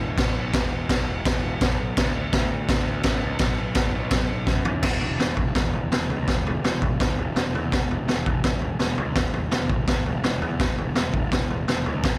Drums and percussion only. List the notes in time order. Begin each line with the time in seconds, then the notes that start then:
0.18 kick, snare, crash
0.54 kick, snare, crash
0.89 kick, snare, crash
1.25 kick, snare, crash
1.61 kick, snare, crash
1.97 kick, snare, crash
2.33 kick, snare, crash
2.69 kick, snare, crash
3.03 kick, snare, crash
3.39 kick, snare, crash
3.75 kick, snare, crash
4.11 kick, snare, crash
4.47 kick, snare
4.65 floor tom
4.83 kick, snare, floor tom, crash
5.01 floor tom
5.20 snare, floor tom
5.37 kick, floor tom
5.55 kick, snare, floor tom
5.73 floor tom
5.92 snare, floor tom
6.10 floor tom
6.28 kick, snare, floor tom
6.47 floor tom
6.64 snare, floor tom
6.82 kick, floor tom
7.00 kick, snare, floor tom
7.19 floor tom
7.36 snare, floor tom
7.55 floor tom
7.72 kick, snare, floor tom
7.91 floor tom
8.08 snare, floor tom
8.26 kick, floor tom
8.44 kick, snare, floor tom
8.62 floor tom
8.79 snare, floor tom
8.98 floor tom
9.16 kick, snare, floor tom
9.34 floor tom
9.51 snare, floor tom
9.69 kick, floor tom
9.88 kick, snare, floor tom
10.06 floor tom
10.24 snare, floor tom
10.42 floor tom
10.60 kick, snare, floor tom
10.78 floor tom
10.96 snare, floor tom
11.14 kick, floor tom
11.32 kick, snare, floor tom
11.50 floor tom
11.68 snare, floor tom
11.86 floor tom
12.04 kick, snare, floor tom